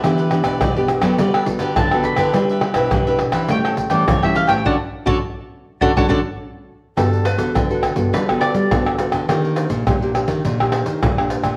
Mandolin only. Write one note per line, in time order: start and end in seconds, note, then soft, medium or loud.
0.00 0.57 E5 medium
1.77 2.04 A5 loud
2.05 2.88 B5 medium
3.50 3.91 G5 medium
3.91 4.06 D5 medium
4.08 4.22 C#5 medium
4.24 4.37 E5 loud
4.36 4.50 F5 loud
4.49 4.64 G5 loud
4.66 4.75 D5 loud
4.66 4.75 F#5 loud
4.66 4.75 A5 medium
5.06 5.17 D5 medium
5.06 5.17 F#5 medium
5.06 5.17 A5 medium
5.81 5.90 D5 medium
5.81 5.90 F#5 medium
5.81 5.91 A5 medium
5.97 6.06 D5 medium
5.97 6.06 F#5 loud
5.97 6.06 A5 loud
6.09 6.19 D5 medium
6.09 6.19 F#5 medium
6.09 6.19 A5 loud
6.97 7.27 A4 medium
7.25 8.12 B4 medium
8.14 8.40 B4 medium
8.41 9.53 D5 loud